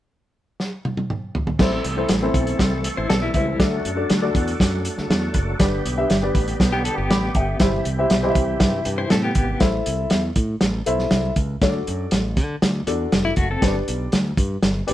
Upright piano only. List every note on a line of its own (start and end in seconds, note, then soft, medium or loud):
1.59 1.81 C4 medium
1.59 1.81 E4 medium
1.59 1.81 A4 medium
1.59 1.82 C5 medium
1.97 2.11 C4 medium
1.97 2.11 E4 medium
1.97 2.12 A4 medium
1.97 2.12 C5 medium
2.23 2.80 C4 medium
2.23 2.80 E4 medium
2.23 2.80 A4 medium
2.23 2.80 C5 medium
3.09 3.33 B4 medium
3.09 3.33 D5 medium
3.35 3.83 C5 soft
3.35 3.82 E5 medium
3.59 3.81 D4 medium
3.59 3.81 F#4 medium
3.59 3.81 A4 medium
3.59 3.82 D5 medium
3.95 4.11 D4 medium
3.95 4.11 F#4 medium
3.95 4.11 A4 medium
3.95 4.11 D5 medium
4.21 4.79 D4 medium
4.21 4.80 F#4 medium
4.21 4.80 A4 medium
4.21 4.80 D5 medium
5.59 5.81 D4 medium
5.59 5.81 G4 medium
5.59 5.81 B4 medium
5.59 5.81 D5 medium
5.97 6.12 D4 medium
5.97 6.12 G4 medium
5.97 6.12 B4 medium
5.97 6.12 E5 medium
6.22 6.80 D4 medium
6.22 6.80 G4 medium
6.22 6.81 B4 medium
6.22 6.81 D5 medium
7.10 7.34 B5 medium
7.10 7.34 D6 medium
7.35 7.59 E5 medium
7.35 7.83 G5 medium
7.59 7.82 E4 medium
7.59 7.82 G4 medium
7.59 7.82 C5 medium
7.59 7.82 E5 medium
7.98 8.13 E4 medium
7.98 8.13 G4 medium
7.98 8.13 C5 medium
7.98 8.13 E5 medium
8.23 8.81 E4 medium
8.23 8.81 G4 medium
8.23 8.81 C5 medium
8.23 8.29 D#5 medium
8.30 8.84 E5 medium
9.60 10.18 E4 medium
9.60 10.18 A4 medium
9.60 10.19 C5 medium
9.60 10.19 E5 medium
10.86 11.30 E4 medium
10.86 11.30 A4 medium
10.86 11.30 C5 medium
10.86 11.30 E5 medium
11.61 12.19 D4 medium
11.61 12.19 F#4 medium
11.61 12.20 A4 medium
11.61 11.68 C#5 medium
11.69 12.23 D5 medium
12.87 13.30 D4 medium
12.87 13.30 F#4 medium
12.87 13.31 A4 medium
12.87 13.31 D5 medium
13.61 14.20 D4 medium
13.61 14.20 G4 medium
13.61 14.20 B4 medium
13.61 13.68 C5 medium
13.68 14.23 D5 medium
14.87 14.94 D4 medium
14.87 14.94 G4 medium
14.87 14.94 B4 medium
14.87 14.94 D5 medium